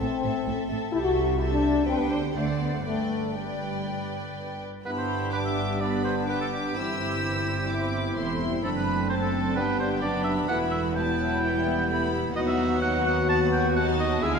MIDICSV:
0, 0, Header, 1, 10, 480
1, 0, Start_track
1, 0, Key_signature, 1, "major"
1, 0, Tempo, 466563
1, 965, Time_signature, 4, 2, 24, 8
1, 1930, Tempo, 495458
1, 4810, Tempo, 476948
1, 7210, Tempo, 466563
1, 14576, End_track
2, 0, Start_track
2, 0, Title_t, "Violin section"
2, 0, Program_c, 0, 48
2, 6, Note_on_c, 0, 76, 45
2, 231, Note_off_c, 0, 76, 0
2, 243, Note_on_c, 0, 76, 46
2, 473, Note_off_c, 0, 76, 0
2, 486, Note_on_c, 0, 76, 44
2, 698, Note_off_c, 0, 76, 0
2, 710, Note_on_c, 0, 76, 43
2, 953, Note_off_c, 0, 76, 0
2, 966, Note_on_c, 0, 76, 50
2, 1411, Note_off_c, 0, 76, 0
2, 1445, Note_on_c, 0, 76, 51
2, 1920, Note_off_c, 0, 76, 0
2, 1927, Note_on_c, 0, 79, 49
2, 2396, Note_off_c, 0, 79, 0
2, 2400, Note_on_c, 0, 78, 42
2, 2881, Note_off_c, 0, 78, 0
2, 2881, Note_on_c, 0, 79, 40
2, 3360, Note_off_c, 0, 79, 0
2, 3371, Note_on_c, 0, 79, 39
2, 4587, Note_off_c, 0, 79, 0
2, 4822, Note_on_c, 0, 83, 50
2, 5268, Note_off_c, 0, 83, 0
2, 5296, Note_on_c, 0, 86, 52
2, 5775, Note_off_c, 0, 86, 0
2, 5783, Note_on_c, 0, 83, 48
2, 6246, Note_off_c, 0, 83, 0
2, 6248, Note_on_c, 0, 86, 48
2, 6719, Note_off_c, 0, 86, 0
2, 6734, Note_on_c, 0, 88, 54
2, 7680, Note_on_c, 0, 86, 49
2, 7695, Note_off_c, 0, 88, 0
2, 8169, Note_off_c, 0, 86, 0
2, 8171, Note_on_c, 0, 84, 49
2, 8646, Note_off_c, 0, 84, 0
2, 8652, Note_on_c, 0, 83, 53
2, 9122, Note_off_c, 0, 83, 0
2, 9142, Note_on_c, 0, 81, 50
2, 9603, Note_off_c, 0, 81, 0
2, 9603, Note_on_c, 0, 79, 49
2, 10079, Note_on_c, 0, 83, 52
2, 10082, Note_off_c, 0, 79, 0
2, 11044, Note_off_c, 0, 83, 0
2, 11056, Note_on_c, 0, 81, 54
2, 11522, Note_off_c, 0, 81, 0
2, 11533, Note_on_c, 0, 79, 53
2, 11997, Note_off_c, 0, 79, 0
2, 12008, Note_on_c, 0, 83, 60
2, 12472, Note_off_c, 0, 83, 0
2, 12484, Note_on_c, 0, 78, 62
2, 13422, Note_off_c, 0, 78, 0
2, 13441, Note_on_c, 0, 78, 60
2, 13914, Note_off_c, 0, 78, 0
2, 13919, Note_on_c, 0, 81, 70
2, 14395, Note_off_c, 0, 81, 0
2, 14403, Note_on_c, 0, 80, 63
2, 14576, Note_off_c, 0, 80, 0
2, 14576, End_track
3, 0, Start_track
3, 0, Title_t, "Oboe"
3, 0, Program_c, 1, 68
3, 4818, Note_on_c, 1, 71, 60
3, 4871, Note_off_c, 1, 71, 0
3, 4934, Note_on_c, 1, 72, 56
3, 5287, Note_off_c, 1, 72, 0
3, 5293, Note_on_c, 1, 71, 57
3, 5348, Note_off_c, 1, 71, 0
3, 5415, Note_on_c, 1, 76, 55
3, 5771, Note_on_c, 1, 74, 58
3, 5786, Note_off_c, 1, 76, 0
3, 6007, Note_off_c, 1, 74, 0
3, 6013, Note_on_c, 1, 72, 55
3, 6120, Note_off_c, 1, 72, 0
3, 6257, Note_on_c, 1, 71, 57
3, 6371, Note_off_c, 1, 71, 0
3, 6381, Note_on_c, 1, 69, 52
3, 6433, Note_off_c, 1, 69, 0
3, 6499, Note_on_c, 1, 67, 55
3, 8383, Note_off_c, 1, 67, 0
3, 8657, Note_on_c, 1, 69, 62
3, 8711, Note_off_c, 1, 69, 0
3, 8778, Note_on_c, 1, 71, 56
3, 9118, Note_off_c, 1, 71, 0
3, 9125, Note_on_c, 1, 72, 59
3, 9180, Note_off_c, 1, 72, 0
3, 9255, Note_on_c, 1, 69, 55
3, 9594, Note_off_c, 1, 69, 0
3, 9600, Note_on_c, 1, 71, 69
3, 9837, Note_off_c, 1, 71, 0
3, 9844, Note_on_c, 1, 72, 60
3, 9952, Note_off_c, 1, 72, 0
3, 10075, Note_on_c, 1, 74, 68
3, 10296, Note_off_c, 1, 74, 0
3, 10302, Note_on_c, 1, 76, 67
3, 10415, Note_off_c, 1, 76, 0
3, 10550, Note_on_c, 1, 78, 71
3, 10661, Note_off_c, 1, 78, 0
3, 10788, Note_on_c, 1, 76, 69
3, 10900, Note_off_c, 1, 76, 0
3, 11041, Note_on_c, 1, 79, 76
3, 12214, Note_off_c, 1, 79, 0
3, 12482, Note_on_c, 1, 75, 76
3, 12536, Note_off_c, 1, 75, 0
3, 12598, Note_on_c, 1, 76, 72
3, 12951, Note_off_c, 1, 76, 0
3, 12956, Note_on_c, 1, 78, 83
3, 13192, Note_off_c, 1, 78, 0
3, 13207, Note_on_c, 1, 78, 84
3, 13435, Note_off_c, 1, 78, 0
3, 13441, Note_on_c, 1, 81, 96
3, 13549, Note_off_c, 1, 81, 0
3, 13678, Note_on_c, 1, 79, 74
3, 13917, Note_off_c, 1, 79, 0
3, 13925, Note_on_c, 1, 78, 83
3, 14034, Note_off_c, 1, 78, 0
3, 14166, Note_on_c, 1, 75, 85
3, 14404, Note_on_c, 1, 76, 85
3, 14420, Note_off_c, 1, 75, 0
3, 14521, Note_off_c, 1, 76, 0
3, 14527, Note_on_c, 1, 77, 84
3, 14576, Note_off_c, 1, 77, 0
3, 14576, End_track
4, 0, Start_track
4, 0, Title_t, "Violin section"
4, 0, Program_c, 2, 48
4, 0, Note_on_c, 2, 69, 49
4, 227, Note_off_c, 2, 69, 0
4, 239, Note_on_c, 2, 69, 45
4, 469, Note_off_c, 2, 69, 0
4, 482, Note_on_c, 2, 69, 45
4, 709, Note_off_c, 2, 69, 0
4, 721, Note_on_c, 2, 69, 45
4, 958, Note_off_c, 2, 69, 0
4, 970, Note_on_c, 2, 69, 53
4, 1413, Note_off_c, 2, 69, 0
4, 1444, Note_on_c, 2, 69, 47
4, 1915, Note_on_c, 2, 71, 45
4, 1920, Note_off_c, 2, 69, 0
4, 2151, Note_off_c, 2, 71, 0
4, 2155, Note_on_c, 2, 72, 43
4, 2384, Note_on_c, 2, 74, 45
4, 2394, Note_off_c, 2, 72, 0
4, 2852, Note_off_c, 2, 74, 0
4, 2864, Note_on_c, 2, 74, 39
4, 3351, Note_off_c, 2, 74, 0
4, 3369, Note_on_c, 2, 74, 42
4, 4586, Note_off_c, 2, 74, 0
4, 4807, Note_on_c, 2, 67, 42
4, 4812, Note_on_c, 2, 64, 40
4, 5263, Note_off_c, 2, 64, 0
4, 5295, Note_on_c, 2, 62, 39
4, 5733, Note_off_c, 2, 67, 0
4, 5765, Note_off_c, 2, 62, 0
4, 5777, Note_on_c, 2, 62, 42
4, 5781, Note_on_c, 2, 71, 42
4, 6254, Note_off_c, 2, 71, 0
4, 6255, Note_on_c, 2, 67, 43
4, 6713, Note_off_c, 2, 62, 0
4, 6717, Note_off_c, 2, 67, 0
4, 6726, Note_on_c, 2, 64, 45
4, 6729, Note_on_c, 2, 67, 42
4, 6969, Note_off_c, 2, 64, 0
4, 6985, Note_on_c, 2, 64, 41
4, 7199, Note_off_c, 2, 67, 0
4, 7207, Note_off_c, 2, 64, 0
4, 7219, Note_on_c, 2, 64, 40
4, 7687, Note_off_c, 2, 64, 0
4, 7699, Note_on_c, 2, 64, 43
4, 8169, Note_off_c, 2, 64, 0
4, 8190, Note_on_c, 2, 64, 40
4, 8192, Note_off_c, 2, 64, 0
4, 8192, Note_on_c, 2, 64, 43
4, 8649, Note_on_c, 2, 62, 42
4, 8657, Note_off_c, 2, 64, 0
4, 9130, Note_off_c, 2, 62, 0
4, 9134, Note_on_c, 2, 60, 42
4, 9136, Note_on_c, 2, 69, 43
4, 9608, Note_off_c, 2, 60, 0
4, 9609, Note_off_c, 2, 69, 0
4, 9609, Note_on_c, 2, 62, 46
4, 9610, Note_on_c, 2, 67, 49
4, 10074, Note_off_c, 2, 62, 0
4, 10086, Note_on_c, 2, 62, 49
4, 10555, Note_off_c, 2, 62, 0
4, 10563, Note_on_c, 2, 64, 49
4, 10564, Note_off_c, 2, 67, 0
4, 10565, Note_on_c, 2, 66, 50
4, 11034, Note_off_c, 2, 64, 0
4, 11037, Note_off_c, 2, 66, 0
4, 11043, Note_on_c, 2, 59, 51
4, 11047, Note_on_c, 2, 64, 50
4, 11993, Note_off_c, 2, 64, 0
4, 12005, Note_on_c, 2, 64, 53
4, 12471, Note_off_c, 2, 64, 0
4, 12478, Note_off_c, 2, 59, 0
4, 12478, Note_on_c, 2, 63, 57
4, 12482, Note_on_c, 2, 66, 56
4, 12941, Note_off_c, 2, 63, 0
4, 12947, Note_off_c, 2, 66, 0
4, 12953, Note_on_c, 2, 63, 53
4, 12960, Note_on_c, 2, 66, 54
4, 13418, Note_off_c, 2, 66, 0
4, 13426, Note_off_c, 2, 63, 0
4, 13430, Note_on_c, 2, 66, 57
4, 13432, Note_off_c, 2, 66, 0
4, 13432, Note_on_c, 2, 66, 62
4, 13922, Note_on_c, 2, 63, 59
4, 14384, Note_off_c, 2, 66, 0
4, 14391, Note_on_c, 2, 68, 61
4, 14394, Note_on_c, 2, 64, 63
4, 14406, Note_off_c, 2, 63, 0
4, 14576, Note_off_c, 2, 64, 0
4, 14576, Note_off_c, 2, 68, 0
4, 14576, End_track
5, 0, Start_track
5, 0, Title_t, "Clarinet"
5, 0, Program_c, 3, 71
5, 4812, Note_on_c, 3, 62, 43
5, 5263, Note_off_c, 3, 62, 0
5, 5307, Note_on_c, 3, 62, 43
5, 5763, Note_off_c, 3, 62, 0
5, 5769, Note_on_c, 3, 62, 43
5, 6239, Note_off_c, 3, 62, 0
5, 6255, Note_on_c, 3, 62, 44
5, 6725, Note_on_c, 3, 64, 51
5, 6740, Note_off_c, 3, 62, 0
5, 8662, Note_on_c, 3, 62, 49
5, 8677, Note_off_c, 3, 64, 0
5, 9129, Note_off_c, 3, 62, 0
5, 9135, Note_on_c, 3, 62, 48
5, 9599, Note_off_c, 3, 62, 0
5, 9608, Note_on_c, 3, 62, 48
5, 10065, Note_off_c, 3, 62, 0
5, 10071, Note_on_c, 3, 62, 47
5, 10559, Note_on_c, 3, 64, 54
5, 10574, Note_off_c, 3, 62, 0
5, 11033, Note_off_c, 3, 64, 0
5, 11039, Note_on_c, 3, 64, 59
5, 12296, Note_off_c, 3, 64, 0
5, 12471, Note_on_c, 3, 66, 64
5, 14362, Note_off_c, 3, 66, 0
5, 14401, Note_on_c, 3, 64, 67
5, 14576, Note_off_c, 3, 64, 0
5, 14576, End_track
6, 0, Start_track
6, 0, Title_t, "French horn section"
6, 0, Program_c, 4, 60
6, 0, Note_on_c, 4, 60, 69
6, 700, Note_off_c, 4, 60, 0
6, 949, Note_on_c, 4, 64, 81
6, 1006, Note_off_c, 4, 64, 0
6, 1075, Note_on_c, 4, 66, 72
6, 1429, Note_on_c, 4, 64, 70
6, 1432, Note_off_c, 4, 66, 0
6, 1486, Note_off_c, 4, 64, 0
6, 1558, Note_on_c, 4, 62, 69
6, 1915, Note_on_c, 4, 60, 69
6, 1919, Note_off_c, 4, 62, 0
6, 2032, Note_on_c, 4, 59, 60
6, 2036, Note_off_c, 4, 60, 0
6, 2152, Note_on_c, 4, 62, 65
6, 2155, Note_off_c, 4, 59, 0
6, 2260, Note_off_c, 4, 62, 0
6, 2391, Note_on_c, 4, 57, 58
6, 2500, Note_off_c, 4, 57, 0
6, 2633, Note_on_c, 4, 59, 56
6, 2753, Note_off_c, 4, 59, 0
6, 2776, Note_on_c, 4, 57, 50
6, 2827, Note_off_c, 4, 57, 0
6, 2886, Note_on_c, 4, 57, 62
6, 3362, Note_off_c, 4, 57, 0
6, 3374, Note_on_c, 4, 55, 47
6, 4333, Note_off_c, 4, 55, 0
6, 4812, Note_on_c, 4, 62, 53
6, 4813, Note_on_c, 4, 59, 54
6, 6692, Note_off_c, 4, 59, 0
6, 6692, Note_off_c, 4, 62, 0
6, 6742, Note_on_c, 4, 60, 56
6, 6743, Note_on_c, 4, 64, 56
6, 8623, Note_off_c, 4, 64, 0
6, 8661, Note_on_c, 4, 62, 57
6, 9573, Note_off_c, 4, 60, 0
6, 9613, Note_on_c, 4, 59, 58
6, 10523, Note_off_c, 4, 62, 0
6, 10561, Note_on_c, 4, 64, 65
6, 12295, Note_off_c, 4, 59, 0
6, 12295, Note_off_c, 4, 64, 0
6, 12470, Note_on_c, 4, 66, 66
6, 12474, Note_on_c, 4, 59, 64
6, 14361, Note_off_c, 4, 66, 0
6, 14363, Note_off_c, 4, 59, 0
6, 14398, Note_on_c, 4, 56, 69
6, 14400, Note_on_c, 4, 64, 70
6, 14576, Note_off_c, 4, 56, 0
6, 14576, Note_off_c, 4, 64, 0
6, 14576, End_track
7, 0, Start_track
7, 0, Title_t, "Bassoon"
7, 0, Program_c, 5, 70
7, 4813, Note_on_c, 5, 59, 43
7, 5263, Note_off_c, 5, 59, 0
7, 5299, Note_on_c, 5, 59, 45
7, 5767, Note_off_c, 5, 59, 0
7, 5783, Note_on_c, 5, 59, 45
7, 6246, Note_off_c, 5, 59, 0
7, 6255, Note_on_c, 5, 59, 43
7, 6739, Note_on_c, 5, 60, 50
7, 6754, Note_off_c, 5, 59, 0
7, 8657, Note_off_c, 5, 60, 0
7, 8663, Note_on_c, 5, 60, 47
7, 9127, Note_off_c, 5, 60, 0
7, 9134, Note_on_c, 5, 60, 48
7, 9599, Note_off_c, 5, 60, 0
7, 9606, Note_on_c, 5, 59, 51
7, 10074, Note_off_c, 5, 59, 0
7, 10088, Note_on_c, 5, 59, 49
7, 10556, Note_off_c, 5, 59, 0
7, 10564, Note_on_c, 5, 59, 54
7, 11037, Note_off_c, 5, 59, 0
7, 11043, Note_on_c, 5, 59, 56
7, 12449, Note_off_c, 5, 59, 0
7, 12473, Note_on_c, 5, 59, 65
7, 14226, Note_off_c, 5, 59, 0
7, 14401, Note_on_c, 5, 56, 67
7, 14576, Note_off_c, 5, 56, 0
7, 14576, End_track
8, 0, Start_track
8, 0, Title_t, "Viola section"
8, 0, Program_c, 6, 48
8, 12, Note_on_c, 6, 69, 52
8, 240, Note_off_c, 6, 69, 0
8, 252, Note_on_c, 6, 69, 46
8, 471, Note_off_c, 6, 69, 0
8, 484, Note_on_c, 6, 69, 48
8, 713, Note_off_c, 6, 69, 0
8, 725, Note_on_c, 6, 69, 48
8, 960, Note_off_c, 6, 69, 0
8, 961, Note_on_c, 6, 67, 50
8, 1408, Note_off_c, 6, 67, 0
8, 1440, Note_on_c, 6, 67, 50
8, 1918, Note_off_c, 6, 67, 0
8, 1930, Note_on_c, 6, 67, 50
8, 2388, Note_off_c, 6, 67, 0
8, 2391, Note_on_c, 6, 72, 43
8, 2873, Note_on_c, 6, 71, 38
8, 2876, Note_off_c, 6, 72, 0
8, 3353, Note_off_c, 6, 71, 0
8, 3365, Note_on_c, 6, 71, 40
8, 4584, Note_off_c, 6, 71, 0
8, 4815, Note_on_c, 6, 55, 43
8, 4815, Note_on_c, 6, 59, 39
8, 5265, Note_off_c, 6, 59, 0
8, 5299, Note_on_c, 6, 62, 37
8, 5777, Note_off_c, 6, 62, 0
8, 5781, Note_on_c, 6, 59, 42
8, 6245, Note_off_c, 6, 59, 0
8, 6258, Note_on_c, 6, 59, 40
8, 6693, Note_off_c, 6, 55, 0
8, 6725, Note_off_c, 6, 59, 0
8, 6730, Note_on_c, 6, 52, 38
8, 6733, Note_on_c, 6, 60, 43
8, 7195, Note_off_c, 6, 52, 0
8, 7207, Note_on_c, 6, 52, 47
8, 7446, Note_off_c, 6, 52, 0
8, 7456, Note_on_c, 6, 55, 45
8, 7689, Note_on_c, 6, 59, 44
8, 7691, Note_off_c, 6, 55, 0
8, 8177, Note_off_c, 6, 60, 0
8, 8178, Note_on_c, 6, 57, 47
8, 8419, Note_off_c, 6, 57, 0
8, 8420, Note_on_c, 6, 55, 47
8, 8655, Note_on_c, 6, 57, 41
8, 8656, Note_off_c, 6, 59, 0
8, 8656, Note_on_c, 6, 60, 44
8, 8659, Note_off_c, 6, 55, 0
8, 9588, Note_off_c, 6, 60, 0
8, 9607, Note_off_c, 6, 57, 0
8, 9611, Note_on_c, 6, 59, 46
8, 9612, Note_on_c, 6, 55, 50
8, 10078, Note_off_c, 6, 59, 0
8, 10086, Note_off_c, 6, 55, 0
8, 10090, Note_on_c, 6, 59, 47
8, 10557, Note_off_c, 6, 59, 0
8, 10565, Note_on_c, 6, 57, 43
8, 10568, Note_off_c, 6, 57, 0
8, 10568, Note_on_c, 6, 57, 47
8, 11048, Note_off_c, 6, 57, 0
8, 11051, Note_on_c, 6, 55, 51
8, 11289, Note_off_c, 6, 55, 0
8, 11296, Note_on_c, 6, 54, 58
8, 11526, Note_off_c, 6, 54, 0
8, 11527, Note_on_c, 6, 55, 53
8, 11531, Note_on_c, 6, 52, 56
8, 11766, Note_on_c, 6, 59, 54
8, 11768, Note_off_c, 6, 52, 0
8, 11999, Note_on_c, 6, 57, 57
8, 12004, Note_off_c, 6, 59, 0
8, 12221, Note_off_c, 6, 55, 0
8, 12233, Note_on_c, 6, 55, 58
8, 12239, Note_off_c, 6, 57, 0
8, 12315, Note_off_c, 6, 55, 0
8, 12474, Note_on_c, 6, 54, 55
8, 12475, Note_on_c, 6, 59, 54
8, 12946, Note_off_c, 6, 59, 0
8, 12958, Note_on_c, 6, 59, 53
8, 13891, Note_off_c, 6, 54, 0
8, 13903, Note_off_c, 6, 59, 0
8, 13922, Note_on_c, 6, 59, 59
8, 13925, Note_on_c, 6, 54, 62
8, 14399, Note_on_c, 6, 56, 58
8, 14408, Note_off_c, 6, 54, 0
8, 14576, Note_off_c, 6, 56, 0
8, 14576, Note_off_c, 6, 59, 0
8, 14576, End_track
9, 0, Start_track
9, 0, Title_t, "Cello section"
9, 0, Program_c, 7, 48
9, 6, Note_on_c, 7, 45, 55
9, 89, Note_off_c, 7, 45, 0
9, 254, Note_on_c, 7, 45, 51
9, 336, Note_off_c, 7, 45, 0
9, 487, Note_on_c, 7, 45, 53
9, 569, Note_off_c, 7, 45, 0
9, 727, Note_on_c, 7, 45, 51
9, 810, Note_off_c, 7, 45, 0
9, 969, Note_on_c, 7, 48, 52
9, 1891, Note_off_c, 7, 48, 0
9, 1929, Note_on_c, 7, 50, 51
9, 2381, Note_off_c, 7, 50, 0
9, 2393, Note_on_c, 7, 50, 48
9, 2867, Note_off_c, 7, 50, 0
9, 2884, Note_on_c, 7, 43, 43
9, 4579, Note_off_c, 7, 43, 0
9, 4809, Note_on_c, 7, 43, 47
9, 6690, Note_off_c, 7, 43, 0
9, 6733, Note_on_c, 7, 43, 49
9, 8148, Note_off_c, 7, 43, 0
9, 8175, Note_on_c, 7, 40, 44
9, 8648, Note_off_c, 7, 40, 0
9, 8648, Note_on_c, 7, 42, 47
9, 9584, Note_off_c, 7, 42, 0
9, 9601, Note_on_c, 7, 43, 50
9, 10078, Note_on_c, 7, 42, 49
9, 10080, Note_off_c, 7, 43, 0
9, 10553, Note_on_c, 7, 40, 53
9, 10560, Note_off_c, 7, 42, 0
9, 12436, Note_off_c, 7, 40, 0
9, 12473, Note_on_c, 7, 39, 61
9, 14365, Note_off_c, 7, 39, 0
9, 14399, Note_on_c, 7, 50, 70
9, 14576, Note_off_c, 7, 50, 0
9, 14576, End_track
10, 0, Start_track
10, 0, Title_t, "Double bass section"
10, 0, Program_c, 8, 48
10, 9, Note_on_c, 8, 33, 52
10, 91, Note_off_c, 8, 33, 0
10, 242, Note_on_c, 8, 33, 49
10, 324, Note_off_c, 8, 33, 0
10, 478, Note_on_c, 8, 33, 51
10, 560, Note_off_c, 8, 33, 0
10, 716, Note_on_c, 8, 33, 49
10, 798, Note_off_c, 8, 33, 0
10, 962, Note_on_c, 8, 36, 54
10, 1887, Note_off_c, 8, 36, 0
10, 1930, Note_on_c, 8, 38, 50
10, 2383, Note_off_c, 8, 38, 0
10, 2395, Note_on_c, 8, 38, 46
10, 2868, Note_off_c, 8, 38, 0
10, 2871, Note_on_c, 8, 31, 42
10, 4572, Note_off_c, 8, 31, 0
10, 4812, Note_on_c, 8, 31, 46
10, 6692, Note_off_c, 8, 31, 0
10, 6730, Note_on_c, 8, 31, 47
10, 8147, Note_off_c, 8, 31, 0
10, 8172, Note_on_c, 8, 28, 44
10, 8646, Note_off_c, 8, 28, 0
10, 8646, Note_on_c, 8, 30, 46
10, 9583, Note_off_c, 8, 30, 0
10, 9603, Note_on_c, 8, 31, 48
10, 10079, Note_on_c, 8, 30, 48
10, 10081, Note_off_c, 8, 31, 0
10, 10561, Note_off_c, 8, 30, 0
10, 10565, Note_on_c, 8, 28, 54
10, 12442, Note_off_c, 8, 28, 0
10, 12471, Note_on_c, 8, 39, 61
10, 14364, Note_off_c, 8, 39, 0
10, 14396, Note_on_c, 8, 38, 68
10, 14576, Note_off_c, 8, 38, 0
10, 14576, End_track
0, 0, End_of_file